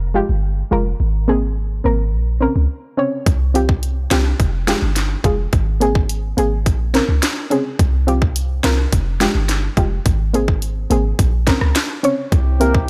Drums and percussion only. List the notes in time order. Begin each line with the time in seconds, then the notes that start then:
3.26 kick, closed hi-hat
3.55 closed hi-hat
3.69 kick
3.83 closed hi-hat
4.11 snare, closed hi-hat
4.40 kick, closed hi-hat
4.68 snare, closed hi-hat
4.96 snare, closed hi-hat
5.24 kick, closed hi-hat
5.53 kick, closed hi-hat
5.81 closed hi-hat
5.95 kick
6.09 closed hi-hat
6.38 closed hi-hat
6.66 kick, closed hi-hat
6.95 snare, closed hi-hat
7.23 snare, closed hi-hat
7.51 closed hi-hat
7.79 kick, closed hi-hat
8.08 closed hi-hat
8.22 kick
8.36 closed hi-hat
8.64 snare, closed hi-hat
8.93 kick, closed hi-hat
9.21 snare, closed hi-hat
9.49 snare, closed hi-hat
9.77 kick, closed hi-hat
10.06 kick, closed hi-hat
10.34 closed hi-hat
10.48 kick
10.62 closed hi-hat
10.91 closed hi-hat
11.19 kick, closed hi-hat
11.47 kick, snare, closed hi-hat
11.61 cross-stick
11.75 snare, closed hi-hat
12.04 closed hi-hat
12.32 kick, closed hi-hat
12.61 closed hi-hat
12.75 kick